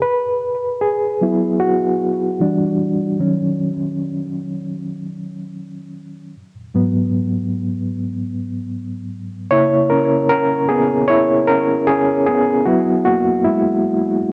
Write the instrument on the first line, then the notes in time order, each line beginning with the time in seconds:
reed electric piano
0.02 B4
0.81 G#4
1.21 F#3 B3 E4
1.60 F#4
2.40 E3 G3 D4
3.19 D#3 F#3 C#4
6.74 G#2 F#3 B3
9.51 C#3 A#3 E4 C#5
9.90 C#4 A#4
10.29 C#4 A#4
10.69 B3 G#4
11.08 E4 C#5
11.47 C#4 A#4
11.87 C#4 G#4
12.26 B3 G#4
12.66 F#3 B3 E4 F#4
13.05 A#3 F#4
13.45 G#3 E4